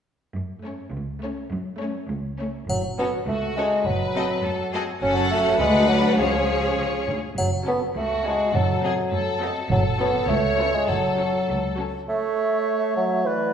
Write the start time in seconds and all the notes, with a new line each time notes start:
0.35 F#2
0.64 A3 C#4 C#5
0.93 C#2
1.23 A3 C#4 C#5
1.51 F#2
1.80 A3 C#4 C#5
2.09 C#2
2.39 A3 C#4 C#5
2.69 F#1 F#2 F#3, triangle
2.98 B3 C#4 F#4 A4 C#5
3.27 C#2 A3 F#4
3.57 G#3 C#4 F#4 A4 C#5
3.86 F#1 F#2 F#3 B4
4.15 C4 F#4 A4 D#5
4.44 F#2 A4
4.72 C4 F#4 G#4 A4 D#5
5.01 F#1 F#2 C#4 F#4 A4 F#5
5.31 A3
5.60 D2 G#3 D4 F#4 B4 F#5
5.88 F#3
6.12 F#3
6.18 C#2 F3 C#4 G#4 C#5
6.77 C#2
7.08 D2
7.37 F#1 F#2 F#3, triangle
7.68 B3 C#4 F#4 A4 C#5
7.96 C#2 A3 F#4
8.26 G#3 C#4 F#4 A4 C#5
8.54 F#1 F#2 F#3 A4
8.84 C4 F#4 G#4 A4 D#5
9.12 F#2 A4
9.42 C4 F#4 A4 D#5
9.71 F#1 F#2 F#3 A4
10.00 B3 C#4 F#4 A4 C#5
10.28 C#2 A3 C#5
10.59 C#4 F4 B4 C#5
10.75 G#3
10.88 F#1 F#2 F#3 A4
11.19 C#4 F#4 A4 C#5
11.49 C#2
11.79 C#4 F#4 A4 C#5
12.09 A3 C#5 E5
12.96 F#3
13.25 E3 B4 D5